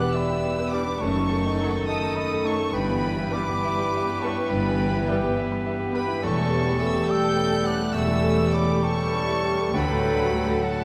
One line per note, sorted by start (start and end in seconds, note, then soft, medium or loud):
0.00 0.97 E2 medium
0.00 1.03 B2 medium
0.00 0.97 E3 medium
0.00 1.03 G3 medium
0.00 0.14 B3 medium
0.00 0.97 B3 medium
0.00 1.03 B3 medium
0.00 0.86 D4 medium
0.00 0.71 G4 medium
0.00 0.97 G4 medium
0.00 0.72 B4 medium
0.00 0.23 B4 medium
0.00 0.16 F#5 medium
0.00 0.18 D6 medium
0.00 0.15 F#6 medium
0.13 0.29 D4 medium
0.13 0.38 D5 medium
0.13 0.75 E5 medium
0.13 0.73 B5 medium
0.13 0.71 E6 medium
0.30 0.44 B3 medium
0.30 0.52 G5 medium
0.43 0.58 G3 medium
0.43 0.66 D5 medium
0.59 0.73 B3 medium
0.59 0.81 B4 medium
0.70 0.82 E3 medium
0.70 0.82 G3 medium
0.70 0.83 B3 medium
0.70 0.86 D4 medium
0.70 0.83 D4 medium
0.70 0.95 G4 medium
0.70 1.02 D5 medium
0.70 1.02 B5 medium
0.70 1.00 D6 loud
0.86 1.01 B3 medium
0.86 1.01 D4 medium
0.99 1.74 F#1 medium
0.99 1.73 F#2 medium
0.99 2.70 F#2 medium
0.99 2.76 D#3 medium
0.99 2.71 D#3 medium
0.99 1.14 A3 medium
0.99 2.70 A3 medium
0.99 2.73 A4 medium
0.99 2.70 A4 medium
0.99 1.63 C#5 loud
0.99 1.64 A5 medium
0.99 1.87 C#6 loud
1.16 1.39 F#3 medium
1.16 1.30 D#4 medium
1.29 1.44 A3 medium
1.29 1.54 A3 medium
1.45 1.60 D#4 medium
1.45 1.69 D#4 medium
1.59 1.69 D#3 medium
1.59 1.70 F#3 medium
1.59 1.70 A3 medium
1.59 1.74 A3 medium
1.59 1.70 D#4 medium
1.59 1.82 A4 medium
1.75 1.89 D#4 medium
1.75 1.98 D#4 medium
1.87 2.02 A3 medium
1.87 2.14 D#5 medium
1.87 2.11 D#5 medium
1.87 2.17 A5 medium
1.87 2.16 D#6 loud
2.02 2.16 D#4 medium
2.02 2.25 A5 medium
2.16 2.31 A3 medium
2.16 2.39 D#5 medium
2.16 2.47 D#5 medium
2.16 2.46 B5 medium
2.16 2.44 D#6 loud
2.32 2.45 D#4 medium
2.32 2.55 A4 medium
2.44 2.55 D#3 medium
2.44 2.55 F#3 medium
2.44 2.55 A3 medium
2.44 2.60 A3 medium
2.44 2.54 D#4 medium
2.44 2.68 D#4 medium
2.44 2.74 C#5 medium
2.44 2.75 A5 medium
2.44 2.74 C#6 loud
2.59 2.74 A3 medium
2.59 2.75 D#4 medium
2.73 3.48 G1 medium
2.73 3.47 G2 medium
2.73 4.46 G2 medium
2.73 6.21 E3 medium
2.73 6.19 G3 medium
2.73 2.89 G3 medium
2.73 7.06 B3 medium
2.73 6.20 G4 medium
2.73 3.34 B4 medium
2.73 6.19 B4 medium
2.73 3.35 G5 medium
2.73 3.33 B5 loud
2.89 3.12 E3 medium
2.89 3.04 B3 medium
3.04 3.27 G3 medium
3.04 3.18 E4 medium
3.17 3.33 B3 medium
3.17 3.41 E4 medium
3.30 3.42 E3 medium
3.30 3.42 G3 medium
3.30 3.41 B3 medium
3.30 3.42 G4 medium
3.30 3.55 B4 medium
3.30 4.21 D5 loud
3.30 4.23 B5 medium
3.30 4.21 D6 loud
3.34 3.48 G3 medium
3.48 3.63 B3 medium
3.48 3.72 G4 medium
3.63 3.77 E4 medium
3.63 3.87 E5 medium
3.78 3.92 B3 medium
3.78 4.02 B5 medium
3.93 4.07 G3 medium
3.93 4.17 E5 medium
4.08 4.22 B3 medium
4.08 4.32 G4 medium
4.19 4.31 E3 medium
4.19 4.31 G3 medium
4.19 4.31 B3 medium
4.19 4.32 G4 medium
4.19 4.52 C#5 medium
4.19 4.50 A5 medium
4.19 4.50 C#6 medium
4.23 4.37 E4 medium
4.23 4.45 B4 medium
4.38 4.51 B3 medium
4.38 4.61 E4 medium
4.48 5.22 G1 medium
4.48 5.21 G2 medium
4.48 4.65 G3 medium
4.48 5.10 B4 medium
4.48 5.06 G5 medium
4.48 5.08 B5 loud
4.53 6.20 G2 medium
4.66 4.89 E3 medium
4.66 4.80 B3 medium
4.80 5.03 G3 medium
4.80 4.94 E4 medium
4.93 5.08 B3 medium
4.93 5.18 E4 medium
5.05 5.18 E3 medium
5.05 5.17 G3 medium
5.05 5.22 G3 medium
5.05 5.16 B3 medium
5.05 5.16 G4 medium
5.05 5.37 G4 medium
5.05 5.35 E5 medium
5.05 5.36 G5 medium
5.10 5.32 B4 medium
5.22 5.36 B3 medium
5.22 5.45 G4 medium
5.36 5.50 E4 medium
5.36 5.59 E5 medium
5.49 5.64 B3 medium
5.49 5.74 B5 medium
5.65 5.79 G3 medium
5.65 5.88 E5 medium
5.77 5.93 B3 medium
5.77 6.02 G4 medium
5.91 6.03 E3 medium
5.91 6.03 G3 medium
5.91 6.03 B3 medium
5.91 6.07 E4 medium
5.91 6.03 G4 medium
5.91 6.26 B4 loud
5.91 6.17 B4 medium
5.91 6.24 G5 medium
5.91 6.21 B5 loud
6.06 6.22 B3 medium
6.06 6.23 E4 medium
6.20 6.95 E1 medium
6.20 6.94 E2 medium
6.20 7.05 E3 medium
6.20 6.35 G3 medium
6.20 6.92 G3 medium
6.20 10.58 G3 medium
6.20 7.06 G3 medium
6.20 7.04 A3 medium
6.20 7.04 A4 medium
6.20 9.68 A4 medium
6.20 7.05 A4 medium
6.20 6.80 A5 medium
6.20 6.81 C#6 loud
6.24 7.92 E2 medium
6.24 6.81 C#5 medium
6.36 6.61 E3 medium
6.36 6.51 A3 medium
6.53 6.75 A3 medium
6.53 6.67 C#4 medium
6.66 6.81 E4 medium
6.66 6.89 G4 medium
6.80 6.95 C#4 medium
6.80 7.03 A4 medium
6.80 7.09 E5 medium
6.80 7.12 C#6 loud
6.80 7.09 E6 loud
6.94 7.09 A3 medium
6.94 7.17 G4 medium
7.07 7.92 E3 medium
7.07 7.93 G3 medium
7.07 7.24 G3 medium
7.07 7.93 A3 medium
7.07 9.72 A3 medium
7.07 7.92 A4 medium
7.07 7.78 A4 medium
7.07 7.32 G5 medium
7.07 7.66 G5 medium
7.07 7.68 E6 loud
7.07 7.64 G6 loud
7.24 7.38 A3 medium
7.24 7.46 A5 medium
7.36 7.52 C#4 medium
7.36 7.60 G5 medium
7.51 7.67 E4 medium
7.51 7.74 A4 medium
7.63 7.80 C#4 medium
7.63 7.87 G4 medium
7.63 7.95 F#5 medium
7.63 7.95 F#6 loud
7.67 7.97 D6 medium
7.79 8.03 A3 medium
7.79 7.95 A3 medium
7.93 8.68 E1 medium
7.93 8.67 E2 medium
7.93 9.68 E2 medium
7.93 8.81 E3 medium
7.93 8.81 G3 medium
7.93 8.09 G3 medium
7.93 8.80 A3 medium
7.93 8.81 A4 medium
7.93 8.55 E5 loud
7.93 8.56 C#6 medium
7.93 8.53 E6 loud
8.07 8.32 E3 medium
8.07 8.24 A3 medium
8.23 8.47 A3 medium
8.23 8.38 C#4 medium
8.38 8.53 E4 medium
8.38 8.62 G4 medium
8.52 8.68 C#4 medium
8.52 8.76 A4 medium
8.52 8.85 D5 medium
8.52 8.85 B5 medium
8.52 8.83 D6 loud
8.68 8.84 A3 medium
8.68 8.92 G4 medium
8.81 9.71 E3 medium
8.81 8.98 G3 medium
8.81 9.71 G3 medium
8.81 9.76 G3 medium
8.81 9.70 A3 medium
8.81 9.71 A4 medium
8.81 9.76 C#5 medium
8.81 9.07 G5 medium
8.81 9.72 A5 loud
8.81 9.72 C#6 loud
8.97 9.12 A3 medium
8.97 9.23 A5 medium
9.12 9.27 C#4 medium
9.16 9.38 G5 medium
9.27 9.43 E4 medium
9.27 9.53 A4 medium
9.42 9.57 C#4 medium
9.42 9.68 G4 medium
9.58 9.71 A3 medium
9.58 9.75 A3 medium
9.72 10.47 D2 medium
9.72 10.84 D2 medium
9.72 10.48 D2 medium
9.72 10.63 D3 medium
9.72 10.62 F#3 medium
9.72 10.63 F#3 medium
9.72 10.60 A3 medium
9.72 9.87 A3 medium
9.72 10.84 A3 medium
9.72 10.84 A4 medium
9.72 10.60 A4 medium
9.72 10.61 A4 medium
9.72 10.62 B4 loud
9.72 10.65 G5 loud
9.72 10.64 B5 loud
9.88 10.12 A2 medium
9.88 10.03 D4 medium
10.03 10.27 A3 medium
10.03 10.18 F#4 medium
10.20 10.34 D4 medium
10.20 10.43 F#4 medium
10.33 10.48 A3 medium
10.33 10.58 A4 medium
10.47 10.62 D4 medium
10.47 10.71 F#4 medium
10.62 10.84 D3 medium
10.62 10.84 F#3 medium
10.62 10.84 A3 medium
10.62 10.77 F#4 medium
10.62 10.84 A4 medium
10.62 10.84 A4 loud
10.62 10.84 A4 medium
10.62 10.84 F#5 medium
10.62 10.84 F#5 loud
10.62 10.84 A5 loud
10.77 10.84 D4 medium
10.77 10.84 A5 medium